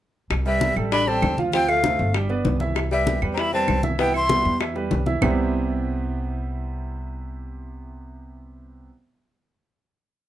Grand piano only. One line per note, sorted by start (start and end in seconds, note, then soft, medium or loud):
0.46 0.71 G3 medium
0.46 0.71 G4 medium
0.46 0.71 B4 medium
0.77 1.02 G3 medium
0.77 1.02 G4 medium
0.77 1.02 A4 medium
1.08 1.33 G3 medium
1.08 1.33 G4 medium
1.08 1.33 A4 medium
1.38 1.51 F3 medium
1.38 1.51 F4 medium
1.38 1.51 F5 medium
1.54 1.79 F3 medium
1.54 1.79 F4 medium
1.54 1.79 F5 medium
1.84 2.09 A3 medium
1.84 2.09 A4 medium
1.84 2.10 C5 medium
2.14 2.27 G3 medium
2.14 2.27 G4 medium
2.14 2.27 G5 medium
2.30 2.55 B3 medium
2.30 2.55 B4 medium
2.30 2.55 D5 medium
2.60 2.86 E3 medium
2.60 2.86 E4 medium
2.60 2.86 E5 medium
2.92 3.17 G3 medium
2.92 3.17 G4 medium
2.92 3.17 B4 medium
3.22 3.47 G3 medium
3.22 3.47 G4 medium
3.22 3.47 B4 medium
3.53 3.78 G3 medium
3.53 3.78 G4 medium
3.53 3.78 B4 medium
3.83 3.96 E3 medium
3.83 3.96 E4 medium
3.83 3.96 E5 medium
3.99 4.24 E3 medium
3.99 4.24 E4 medium
3.99 4.24 E5 medium
4.30 4.55 G3 medium
4.30 4.55 B3 medium
4.30 4.55 G4 medium
4.60 4.73 E3 medium
4.60 4.73 E4 medium
4.60 4.73 E5 medium
4.76 5.01 G3 medium
4.76 5.01 G4 medium
4.76 5.01 B4 medium
5.06 5.19 E3 medium
5.06 5.19 E4 medium
5.06 5.19 E5 medium
5.22 8.88 C3 medium
5.22 8.88 G3 medium
5.22 8.88 B3 medium
5.22 8.89 C4 medium
5.22 8.89 E4 medium
5.22 8.89 G4 medium